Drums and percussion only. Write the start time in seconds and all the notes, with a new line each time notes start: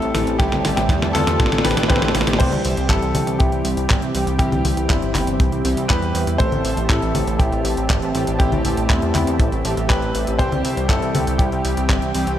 0.02 closed hi-hat
0.15 snare, open hi-hat
0.27 closed hi-hat
0.40 kick, snare, closed hi-hat
0.52 snare, closed hi-hat, high conga
0.65 snare, open hi-hat, high conga
0.77 snare, closed hi-hat
0.89 kick, snare, closed hi-hat
1.02 snare, closed hi-hat
1.15 snare, open hi-hat, high conga
1.27 snare, closed hi-hat
1.40 kick, snare, closed hi-hat
1.46 snare
1.52 snare, closed hi-hat
1.58 snare
1.65 snare, open hi-hat
1.71 snare
1.77 snare, closed hi-hat
1.83 snare
1.90 kick, snare, closed hi-hat
1.96 snare
2.02 snare, closed hi-hat
2.08 snare
2.15 snare, open hi-hat
2.21 snare
2.27 snare, closed hi-hat
2.33 snare
2.40 kick, closed hi-hat, crash
2.52 closed hi-hat, high conga
2.65 open hi-hat
2.77 closed hi-hat
2.89 kick, clap, closed hi-hat
3.02 closed hi-hat
3.15 open hi-hat, high conga
3.27 closed hi-hat
3.40 kick, closed hi-hat
3.52 closed hi-hat
3.65 open hi-hat
3.77 closed hi-hat
3.90 kick, clap, closed hi-hat
4.02 closed hi-hat
4.15 open hi-hat
4.27 closed hi-hat
4.39 kick, closed hi-hat
4.52 closed hi-hat, high conga
4.65 open hi-hat, high conga
4.77 closed hi-hat
4.90 kick, clap, closed hi-hat
5.02 closed hi-hat
5.15 clap, open hi-hat, high conga
5.27 closed hi-hat
5.40 kick, closed hi-hat
5.52 closed hi-hat
5.65 open hi-hat
5.77 closed hi-hat
5.90 kick, clap, closed hi-hat
6.02 closed hi-hat
6.15 open hi-hat
6.27 closed hi-hat
6.40 kick, closed hi-hat
6.52 closed hi-hat, high conga
6.65 open hi-hat
6.77 closed hi-hat
6.90 kick, clap, closed hi-hat
7.02 closed hi-hat
7.15 open hi-hat, high conga
7.27 closed hi-hat
7.40 kick, closed hi-hat
7.52 closed hi-hat
7.65 open hi-hat
7.77 closed hi-hat
7.90 kick, clap, closed hi-hat
8.02 closed hi-hat
8.15 open hi-hat
8.27 closed hi-hat
8.40 kick, closed hi-hat
8.52 closed hi-hat, high conga
8.65 open hi-hat, high conga
8.77 closed hi-hat
8.90 kick, clap, closed hi-hat
9.02 closed hi-hat
9.15 clap, open hi-hat, high conga
9.27 closed hi-hat
9.40 kick, closed hi-hat
9.52 closed hi-hat
9.65 open hi-hat
9.77 closed hi-hat
9.90 kick, clap, closed hi-hat
10.02 closed hi-hat
10.15 open hi-hat
10.27 closed hi-hat
10.39 kick, closed hi-hat
10.52 closed hi-hat, high conga
10.65 open hi-hat
10.77 closed hi-hat
10.89 kick, clap, closed hi-hat
11.02 closed hi-hat
11.15 open hi-hat, high conga
11.27 closed hi-hat
11.39 kick, closed hi-hat
11.52 closed hi-hat
11.65 open hi-hat
11.77 closed hi-hat
11.89 kick, clap, closed hi-hat
12.02 closed hi-hat
12.15 open hi-hat
12.27 closed hi-hat